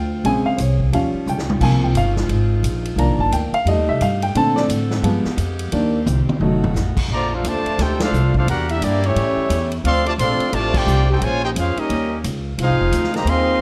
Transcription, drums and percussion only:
0.25 ride
0.58 hi-hat pedal, ride
0.80 kick
0.93 ride
1.27 hi-hat pedal, mid tom
1.38 snare
1.50 mid tom
1.61 kick, crash
1.95 hi-hat pedal, ride
2.16 snare
2.29 ride
2.64 hi-hat pedal, ride
2.85 ride
2.98 ride
3.19 kick
3.32 hi-hat pedal, ride
3.54 ride
3.67 ride
4.01 hi-hat pedal, ride
4.22 ride
4.35 ride
4.57 snare
4.70 hi-hat pedal, ride
4.91 snare
5.04 ride
5.25 snare
5.38 hi-hat pedal, ride
5.59 ride
5.72 ride
6.06 hi-hat pedal, high tom
6.29 high tom
6.40 floor tom
6.64 floor tom
6.75 snare, hi-hat pedal
6.97 kick, crash
7.44 hi-hat pedal, ride
7.66 ride
7.79 snare, ride
8.00 snare, ride
8.14 hi-hat pedal
8.34 kick
8.48 ride
8.69 ride
8.82 hi-hat pedal, ride
9.03 ride
9.16 ride
9.50 hi-hat pedal, ride
9.72 ride
9.85 ride
10.06 ride
10.19 hi-hat pedal, ride
10.40 ride
10.53 ride
10.74 kick, crash
10.87 hi-hat pedal
11.22 ride
11.56 hi-hat pedal, ride
11.77 ride
11.90 ride
12.24 hi-hat pedal, ride
12.58 ride
12.92 hi-hat pedal, ride
13.04 snare
13.14 snare, ride
13.27 ride

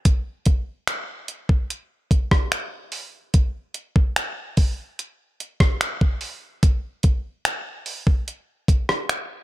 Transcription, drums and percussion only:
0.05 kick, closed hi-hat
0.46 kick, closed hi-hat
0.87 finger snap, closed hi-hat
1.28 closed hi-hat
1.49 kick
1.70 closed hi-hat
2.11 kick, closed hi-hat
2.31 kick, cross-stick
2.52 finger snap, closed hi-hat
2.92 open hi-hat
3.34 kick, closed hi-hat
3.74 closed hi-hat
3.96 kick
4.16 finger snap, closed hi-hat
4.57 kick, open hi-hat
4.99 closed hi-hat
5.40 closed hi-hat
5.60 kick, cross-stick
5.81 finger snap, closed hi-hat
6.01 kick
6.21 open hi-hat
6.63 kick, closed hi-hat
7.03 kick, closed hi-hat
7.45 finger snap, closed hi-hat
7.86 open hi-hat
8.07 kick
8.28 closed hi-hat
8.68 kick, closed hi-hat
8.89 cross-stick
9.09 finger snap, closed hi-hat

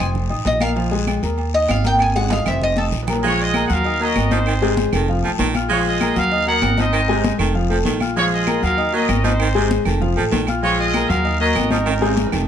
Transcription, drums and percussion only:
0.00 high conga, low conga
0.15 high conga, low conga, long guiro
0.30 high conga, low agogo
0.45 high conga, low timbale, short guiro
0.60 high conga, low agogo, short guiro, claves
0.76 low agogo, long guiro
0.91 high conga, low agogo
1.07 high conga, low timbale, low agogo, short guiro, claves
1.23 high conga, short guiro
1.38 high conga, low agogo, long guiro
1.54 high conga
1.68 high conga, low timbale, low agogo, short guiro, claves
1.84 high conga, short guiro
1.99 high timbale, low agogo, long guiro, claves
2.14 high conga, low agogo
2.20 high timbale
2.30 high conga, low timbale, short guiro
2.46 high conga, low conga, low agogo, short guiro, claves
2.51 low timbale
2.62 high conga, low conga, long guiro
2.76 high conga, low agogo
2.92 low conga, short guiro
3.03 low timbale
3.07 low conga, low agogo, short guiro, claves
3.13 low timbale
3.23 high conga, low agogo, long guiro
3.38 high conga, low agogo
3.54 high conga, low timbale, low agogo, short guiro, claves
3.70 high conga, short guiro
3.84 high conga, low agogo, long guiro
4.01 high conga
4.16 high conga, low timbale, low agogo, short guiro, claves
4.31 high conga, short guiro
4.46 high conga, low agogo, long guiro, claves
4.62 high conga, low agogo
4.77 high conga, low timbale, short guiro
4.93 high conga, low conga, low agogo, short guiro, claves
5.08 high conga, long guiro
5.24 high conga, low agogo
5.39 high conga, low timbale, short guiro
5.54 high conga, low agogo, short guiro, claves
5.70 low agogo, long guiro
5.85 high conga, low agogo
6.01 high conga, low timbale, low agogo, short guiro, claves
6.16 high conga, short guiro
6.32 high conga, low agogo, long guiro
6.47 high conga
6.62 high conga, low timbale, low agogo, short guiro, claves
6.78 high conga, short guiro
6.93 high conga, low agogo, long guiro, claves
7.08 high conga, low agogo
7.24 high conga, low timbale, short guiro
7.39 high conga, low conga, low agogo, short guiro, claves
7.55 high conga, long guiro
7.70 high conga, low agogo
7.85 high conga, low timbale, short guiro
8.00 high conga, low agogo, short guiro, claves
8.16 high conga, low agogo, long guiro
8.32 high conga, low agogo
8.47 high conga, low timbale, low agogo, short guiro, claves
8.63 high conga, short guiro
8.78 high conga, low agogo, long guiro
8.94 high conga
9.09 high conga, low timbale, low agogo, short guiro, claves
9.24 high conga, short guiro
9.40 high conga, low agogo, long guiro, claves
9.55 high conga, low agogo
9.71 high conga, low timbale, short guiro
9.85 high conga, low conga, low agogo, short guiro, claves
10.02 high conga, low conga, long guiro
10.16 high conga, low agogo
10.32 high conga, low timbale, short guiro
10.47 high conga, low agogo, short guiro, claves
10.63 high conga, low agogo, long guiro
10.78 high conga, low agogo
10.94 high conga, low timbale, low agogo, short guiro, claves
11.09 high conga, short guiro
11.25 high conga, low agogo, long guiro
11.40 high conga
11.55 high conga, low timbale, low agogo, short guiro, claves
11.71 high conga, short guiro
11.86 high timbale, low agogo, long guiro, claves
11.96 high timbale
12.01 high conga, low agogo
12.06 high timbale
12.16 high conga, high timbale, short guiro
12.26 low timbale
12.32 high conga, low conga, low agogo, short guiro, claves

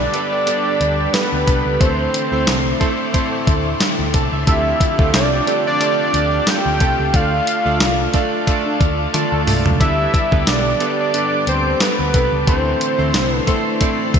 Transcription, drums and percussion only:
0.14 closed hi-hat
0.47 closed hi-hat
0.81 closed hi-hat
1.14 snare, closed hi-hat, tambourine
1.48 kick, closed hi-hat
1.81 kick, closed hi-hat
2.14 closed hi-hat
2.47 snare, closed hi-hat, tambourine
2.81 kick, closed hi-hat
3.14 kick, closed hi-hat
3.47 kick, closed hi-hat
3.80 snare, closed hi-hat, tambourine
4.14 kick, closed hi-hat
4.47 kick, closed hi-hat
4.81 kick, closed hi-hat
4.99 kick
5.14 snare, closed hi-hat, tambourine
5.47 closed hi-hat
5.81 closed hi-hat
6.14 closed hi-hat
6.47 snare, closed hi-hat, tambourine
6.80 kick, closed hi-hat
7.14 kick, closed hi-hat
7.47 closed hi-hat
7.80 snare, closed hi-hat, tambourine
8.14 kick, closed hi-hat
8.47 kick, closed hi-hat
8.81 kick, closed hi-hat
9.14 closed hi-hat, high tom
9.47 mid tom, open hi-hat
9.66 floor tom
9.81 kick, closed hi-hat
10.14 kick, closed hi-hat
10.32 kick
10.47 snare, closed hi-hat, tambourine
10.80 closed hi-hat
11.14 closed hi-hat
11.47 closed hi-hat
11.80 snare, closed hi-hat, tambourine
12.14 kick, closed hi-hat
12.47 kick, closed hi-hat
12.81 closed hi-hat
13.14 snare, closed hi-hat, tambourine
13.47 kick, closed hi-hat
13.81 kick, closed hi-hat
14.14 kick, closed hi-hat

